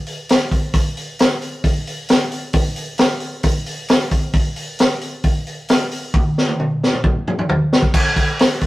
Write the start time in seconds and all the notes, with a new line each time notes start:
0.07 open hi-hat
0.29 snare, open hi-hat
0.51 kick, open hi-hat
0.74 kick, open hi-hat
0.97 open hi-hat
1.19 snare, open hi-hat
1.42 open hi-hat
1.64 kick, open hi-hat
1.87 open hi-hat
2.09 snare, open hi-hat
2.32 open hi-hat
2.53 kick, open hi-hat
2.76 open hi-hat
2.98 snare, open hi-hat
3.20 open hi-hat
3.43 kick, open hi-hat
3.66 open hi-hat
3.88 snare, open hi-hat
4.11 kick, open hi-hat
4.33 kick, open hi-hat
4.56 open hi-hat
4.79 snare, open hi-hat
5.01 open hi-hat
5.24 kick, open hi-hat
5.47 open hi-hat
5.68 snare, open hi-hat
5.91 open hi-hat
6.14 kick, high tom
6.38 snare
6.48 high tom
6.60 mid tom
6.83 snare
6.93 mid tom
7.04 kick, mid tom
7.28 mid tom
7.39 mid tom
7.49 floor tom
7.73 snare
7.83 kick
7.94 kick, crash
8.16 kick, open hi-hat
8.39 snare, open hi-hat
8.61 kick, open hi-hat